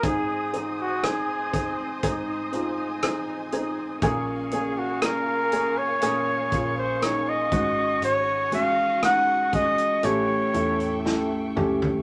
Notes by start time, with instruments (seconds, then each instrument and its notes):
Already playing: nylon-string guitar F#3 A#3 C#4 F4, string section D#6
0.03 nylon-string guitar G#2, felt piano G#2 C4 D#4 G#4, flugelhorn G#4, string section C5 D#5 G#5, kick, closed hi-hat
0.28 nylon-string guitar D#4
0.53 felt piano C4 D#4 G#4, nylon-string guitar G#4, closed hi-hat
0.78 nylon-string guitar D#4, flugelhorn F#4
1.03 felt piano C4 D#4 G#4, nylon-string guitar G#4, flugelhorn G#4, cross-stick, closed hi-hat
1.29 nylon-string guitar D#4
1.53 felt piano C4 D#4 G#4, nylon-string guitar G#4, kick, closed hi-hat
1.78 nylon-string guitar C4
2.03 nylon-string guitar G#2, felt piano C4 D#4 G#4, string section G#5, kick, closed hi-hat
2.27 nylon-string guitar D#4
2.52 felt piano C4 D#4 F4, nylon-string guitar G#4, closed hi-hat
2.77 nylon-string guitar D#4
3.02 felt piano C4 D#4 G#4, nylon-string guitar G#4, cross-stick, closed hi-hat
3.27 nylon-string guitar D#4
3.52 felt piano C4 D#4 G#4, nylon-string guitar G#4, closed hi-hat
3.77 nylon-string guitar C4
4.02 fingered electric bass A#1, nylon-string guitar A#2, felt piano A#2 A#3 C#4 G#4, string section A#4 F5 G#5 C#6, kick, closed hi-hat
4.27 nylon-string guitar F4
4.51 felt piano A#3 C#4 G#4, nylon-string guitar G#4, flugelhorn G#4, closed hi-hat
4.77 nylon-string guitar F4, flugelhorn F#4
5.01 felt piano A#3 C#4 G#4, nylon-string guitar G#4, flugelhorn A#4, cross-stick, closed hi-hat
5.26 nylon-string guitar F4
5.51 felt piano A#3 C#4 G#4, nylon-string guitar G#4, closed hi-hat
5.76 nylon-string guitar C#4, flugelhorn C#5
6.01 nylon-string guitar A#2, felt piano A#3 C#4 G#4, closed hi-hat
6.26 nylon-string guitar F4
6.51 fingered electric bass A#1, felt piano A#3 C#4 F4, nylon-string guitar G#4, kick, closed hi-hat
6.76 nylon-string guitar F4, flugelhorn C5
7.02 felt piano A#3 C#4 D#4, nylon-string guitar G#4, flugelhorn C#5, cross-stick, closed hi-hat
7.26 nylon-string guitar F4, flugelhorn D#5
7.51 fingered electric bass G#1, nylon-string guitar G#2, felt piano G#2 G#3 C#4 F#4, string section F#4 G#4 D#5, kick, closed hi-hat
7.77 nylon-string guitar C#4
8.02 fingered electric bass G#1, nylon-string guitar G#2, flugelhorn C#5, closed hi-hat
8.27 nylon-string guitar F#4
8.51 felt piano G#3 C#4 F#4, nylon-string guitar G#4, flugelhorn F5, closed hi-hat
8.77 nylon-string guitar F#4
9.02 felt piano G#3 C#4 D#4, nylon-string guitar G#4, flugelhorn F#5, cross-stick, closed hi-hat
9.27 nylon-string guitar F#4
9.52 felt piano G#3 C#4 F#4, nylon-string guitar G#4, flugelhorn D#5, kick, closed hi-hat
9.78 nylon-string guitar C#4, closed hi-hat
10.02 fingered electric bass A1, nylon-string guitar A2, felt piano A2 A3 C#4 G4, string section A4 E5 G5, flugelhorn C#5, closed hi-hat
10.28 nylon-string guitar E4
10.53 fingered electric bass E2, felt piano A3 C#4 E4, nylon-string guitar A4, closed hi-hat
10.79 nylon-string guitar E4, closed hi-hat
11.05 felt piano A3 C#4 E4, nylon-string guitar A4, snare
11.30 nylon-string guitar E4
11.56 fingered electric bass C#2, felt piano A3 C#4 G4, nylon-string guitar A4, mid tom
11.81 nylon-string guitar C#4, floor tom